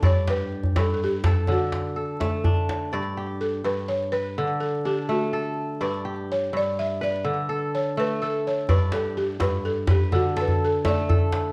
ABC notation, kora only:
X:1
M:12/8
L:1/8
Q:3/8=83
K:Glyd
V:1 name="Kora"
[Dd] G3 z A2 z A2 D2 | d G3 z B2 z D2 A2 | d G3 z B2 A3 A2 | d G3 z B2 A3 A2 |]
V:2 name="Kora" clef=bass
G,,2 z G,,2 z D,2 z A,2 z | G,,2 z G,,2 z D,2 z A,2 z | G,,2 z G,,2 z D,2 z A,2 z | G,,2 z G,,2 z D,2 z A,2 z |]